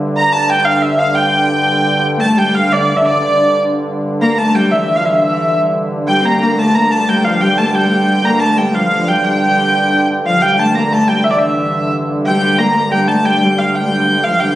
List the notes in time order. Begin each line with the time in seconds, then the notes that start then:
Already playing: G2 D3
0.17 A#5
0.33 A5
0.50 G5
0.65 F5
0.82 E5
0.99 F5
1.15 G5
2.16 G2 D3 A3 A#3
2.21 A5
2.36 G3 G5
2.55 F5
2.70 D3 D5
2.94 E3 E5
3.03 D3 D5
3.20 D3 D5
4.21 A#3 A#5
4.38 A3 A5
4.55 G3 G5
4.71 E3 E5
4.96 F3 F5
5.05 E3 E5
5.20 E3 E5
6.07 G3 G5
6.20 G2 D3 A#3 C4
6.25 A#5
6.40 A#3 A#5
6.58 A3 A5
6.75 A#3 A#5
6.91 A3 A5
7.09 G3 G5
7.24 F3 F5
7.41 G3 G5
7.57 A3 A5
7.62 A#3
7.67 A3
7.74 G3 G5
8.24 A#3 A#5
8.39 A3 A5
8.58 G3 G5
8.74 F3 F5
8.92 F3
9.08 G3 G5
9.24 G3 G5
10.23 G2 D3 F3 F5
10.40 G3 G5
10.58 A3 A5
10.73 A#3 A#5
10.90 A3 A5
11.08 G3 G5
11.24 E3 E5
11.31 D5
11.38 E3 E5
12.26 G3 G5
12.58 A#3 A#5
12.74 A#3 A#5
12.90 G3 G5
13.07 A3 A5
13.25 G3 G5
13.42 G3
13.59 F5
13.75 G3 G5
13.81 A3
13.88 G3
14.08 G3
14.23 G2 D3 F3 F5
14.40 G3 G5